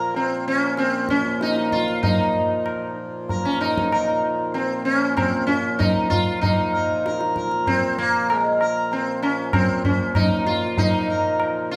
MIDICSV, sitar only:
0, 0, Header, 1, 2, 480
1, 0, Start_track
1, 0, Tempo, 628272
1, 1561, Time_signature, 7, 2, 24, 8
1, 4436, Tempo, 621762
1, 9032, End_track
2, 0, Start_track
2, 0, Title_t, "Sitar"
2, 0, Program_c, 0, 104
2, 0, Note_on_c, 0, 70, 35
2, 101, Note_off_c, 0, 70, 0
2, 124, Note_on_c, 0, 60, 62
2, 361, Note_off_c, 0, 60, 0
2, 364, Note_on_c, 0, 61, 71
2, 585, Note_off_c, 0, 61, 0
2, 599, Note_on_c, 0, 60, 66
2, 838, Note_off_c, 0, 60, 0
2, 841, Note_on_c, 0, 61, 77
2, 1064, Note_off_c, 0, 61, 0
2, 1087, Note_on_c, 0, 63, 75
2, 1315, Note_off_c, 0, 63, 0
2, 1318, Note_on_c, 0, 65, 84
2, 1546, Note_off_c, 0, 65, 0
2, 1549, Note_on_c, 0, 63, 78
2, 2245, Note_off_c, 0, 63, 0
2, 2523, Note_on_c, 0, 70, 32
2, 2637, Note_on_c, 0, 61, 66
2, 2745, Note_off_c, 0, 70, 0
2, 2753, Note_off_c, 0, 61, 0
2, 2756, Note_on_c, 0, 63, 74
2, 3000, Note_on_c, 0, 70, 35
2, 3223, Note_off_c, 0, 70, 0
2, 3327, Note_off_c, 0, 63, 0
2, 3470, Note_on_c, 0, 60, 62
2, 3703, Note_off_c, 0, 60, 0
2, 3706, Note_on_c, 0, 61, 67
2, 3944, Note_off_c, 0, 61, 0
2, 3947, Note_on_c, 0, 60, 74
2, 4173, Note_off_c, 0, 60, 0
2, 4176, Note_on_c, 0, 61, 76
2, 4422, Note_on_c, 0, 63, 79
2, 4433, Note_off_c, 0, 61, 0
2, 4653, Note_off_c, 0, 63, 0
2, 4662, Note_on_c, 0, 65, 87
2, 4903, Note_off_c, 0, 65, 0
2, 4906, Note_on_c, 0, 63, 79
2, 5161, Note_on_c, 0, 70, 28
2, 5384, Note_off_c, 0, 70, 0
2, 5401, Note_on_c, 0, 70, 30
2, 5604, Note_off_c, 0, 63, 0
2, 5625, Note_off_c, 0, 70, 0
2, 5641, Note_on_c, 0, 70, 31
2, 5865, Note_off_c, 0, 70, 0
2, 5877, Note_on_c, 0, 60, 79
2, 6114, Note_off_c, 0, 60, 0
2, 6117, Note_on_c, 0, 58, 77
2, 6411, Note_off_c, 0, 58, 0
2, 6411, Note_on_c, 0, 56, 77
2, 6569, Note_off_c, 0, 56, 0
2, 6608, Note_on_c, 0, 70, 35
2, 6828, Note_off_c, 0, 70, 0
2, 6845, Note_on_c, 0, 60, 59
2, 7072, Note_off_c, 0, 60, 0
2, 7075, Note_on_c, 0, 61, 66
2, 7312, Note_off_c, 0, 61, 0
2, 7315, Note_on_c, 0, 60, 65
2, 7541, Note_off_c, 0, 60, 0
2, 7555, Note_on_c, 0, 61, 69
2, 7795, Note_on_c, 0, 63, 75
2, 7805, Note_off_c, 0, 61, 0
2, 8029, Note_off_c, 0, 63, 0
2, 8032, Note_on_c, 0, 65, 76
2, 8275, Note_off_c, 0, 65, 0
2, 8278, Note_on_c, 0, 63, 83
2, 8521, Note_on_c, 0, 70, 30
2, 8741, Note_off_c, 0, 70, 0
2, 8994, Note_off_c, 0, 63, 0
2, 8997, Note_on_c, 0, 65, 75
2, 9032, Note_off_c, 0, 65, 0
2, 9032, End_track
0, 0, End_of_file